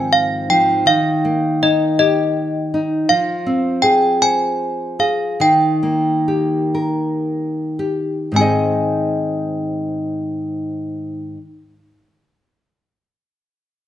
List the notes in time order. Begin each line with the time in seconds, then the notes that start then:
Already playing: G#2 D#3 F3 C4 G#5
0.13 F5
0.50 F3 G5
0.86 D#3 F5
1.25 A#3
1.62 D#4 D#5
1.99 G4 D#5
2.74 D#4
3.09 F3 F5
3.46 C4
3.82 G#4 G5
4.22 C5 G#5
4.99 G#4 F5
5.40 D#3 G5
5.83 A#3
6.28 G4
6.75 A#4
7.79 G4
8.32 G#2 D#3 C4
8.36 F4 G#4 G#5
8.41 D#5